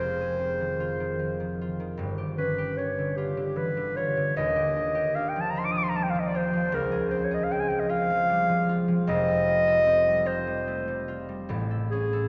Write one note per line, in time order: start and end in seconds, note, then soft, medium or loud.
0.00 2.03 F1 medium
0.00 2.03 F2 medium
0.00 1.18 F3 soft
0.00 0.38 C4 soft
0.00 0.20 G#4 soft
0.00 1.61 C5 loud
0.21 2.04 G#4 medium
0.39 2.02 C4 soft
0.60 0.99 D#3 soft
0.80 1.60 F4 medium
1.00 1.39 D#3 soft
1.19 1.54 F3 soft
1.40 1.79 D#3 soft
1.61 3.16 F4 soft
1.80 2.03 D#3 soft
1.97 4.39 G1 medium
1.97 4.39 G2 medium
2.18 2.57 G4 soft
2.38 2.77 C#4 soft
2.38 2.79 B4 medium
2.58 4.55 G4 medium
2.77 4.40 C#4 soft
2.77 3.18 C#5 medium
2.99 3.36 D3 soft
3.17 3.96 F4 medium
3.17 3.59 G4 medium
3.37 3.76 D3 soft
3.56 3.90 E3 soft
3.56 3.98 B4 medium
3.77 4.16 D3 soft
3.96 5.55 F4 soft
3.96 4.36 C#5 loud
4.17 4.40 D3 soft
4.36 6.76 D#1 medium
4.36 6.76 D#2 medium
4.36 5.17 D#5 medium
4.56 4.94 G4 soft
4.76 5.15 D4 soft
4.95 6.76 G4 medium
5.15 6.77 D4 soft
5.15 5.31 F5 medium
5.29 5.43 G5 medium
5.36 5.74 F3 soft
5.41 5.52 A5 medium
5.50 5.60 A#5 medium
5.56 6.33 F4 medium
5.56 5.66 C6 medium
5.65 5.73 D6 medium
5.72 6.14 F3 medium
5.72 5.79 D#6 medium
5.77 5.85 D6 medium
5.83 5.91 C6 medium
5.89 5.98 A#5 medium
5.96 6.29 G3 soft
5.96 6.05 A5 medium
6.03 6.12 G5 medium
6.10 6.21 F5 medium
6.15 6.52 F3 medium
6.19 6.29 D#5 medium
6.28 6.38 D5 medium
6.35 7.88 F4 medium
6.35 6.76 C5 loud
6.53 7.69 F3 soft
6.72 9.11 C#2 medium
6.72 7.09 A#4 medium
6.92 7.30 G#4 medium
7.10 7.50 C4 medium
7.10 7.26 C5 medium
7.24 7.36 C#5 medium
7.31 9.11 G#4 medium
7.31 7.46 D#5 medium
7.44 7.53 F5 medium
7.51 9.47 C4 medium
7.51 7.62 G5 medium
7.60 7.70 G#5 medium
7.69 8.09 F3 soft
7.69 7.81 G5 medium
7.80 7.92 D#5 medium
7.89 8.68 F4 medium
7.89 8.82 F5 loud
8.10 8.48 F3 medium
8.30 8.63 G3 soft
8.49 8.87 F3 medium
8.69 10.24 F4 medium
8.88 11.52 F3 medium
9.07 11.52 F1 medium
9.07 11.52 F2 medium
9.07 10.28 D#5 loud
9.28 9.66 A4 medium
9.48 9.86 C4 soft
9.68 11.70 A4 medium
9.87 11.52 C4 soft
10.07 10.46 G3 soft
10.26 11.07 F4 medium
10.26 11.07 C5 medium
10.47 10.86 G3 soft
10.68 11.02 A3 soft
10.88 11.28 G3 medium
11.08 11.52 F4 medium
11.29 11.53 G3 soft
11.49 12.28 A1 medium
11.49 12.28 A2 medium
11.71 12.12 A4 soft
11.91 12.28 C#4 medium
11.91 12.28 G#4 medium
12.13 12.28 A4 medium